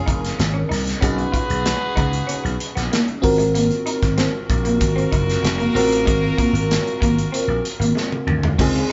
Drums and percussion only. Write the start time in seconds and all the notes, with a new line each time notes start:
0.08 kick, closed hi-hat
0.25 snare, closed hi-hat
0.39 snare, closed hi-hat
0.72 snare, open hi-hat
0.87 snare, closed hi-hat
1.02 kick, closed hi-hat
1.18 closed hi-hat
1.34 kick, closed hi-hat
1.50 closed hi-hat
1.66 snare, closed hi-hat
1.97 kick, closed hi-hat
2.13 closed hi-hat
2.29 closed hi-hat
2.46 closed hi-hat
2.60 closed hi-hat
2.77 snare, closed hi-hat
2.93 snare, closed hi-hat
3.08 closed hi-hat
3.24 kick, open hi-hat
3.40 closed hi-hat
3.55 closed hi-hat
3.71 closed hi-hat
3.87 closed hi-hat
4.03 kick, snare, closed hi-hat
4.18 snare, closed hi-hat
4.50 kick, closed hi-hat
4.65 closed hi-hat
4.81 kick, closed hi-hat
4.98 closed hi-hat
5.13 kick, closed hi-hat
5.29 snare, closed hi-hat
5.45 snare, closed hi-hat
5.60 closed hi-hat
5.76 open hi-hat
5.92 closed hi-hat
6.07 kick, closed hi-hat
6.38 kick, closed hi-hat
6.55 closed hi-hat
6.71 snare, closed hi-hat
6.87 closed hi-hat
7.02 kick, closed hi-hat
7.19 closed hi-hat
7.34 closed hi-hat
7.65 closed hi-hat
7.82 closed hi-hat
7.97 snare
8.12 high tom
8.28 mid tom
8.43 floor tom
8.59 kick, crash
8.75 ride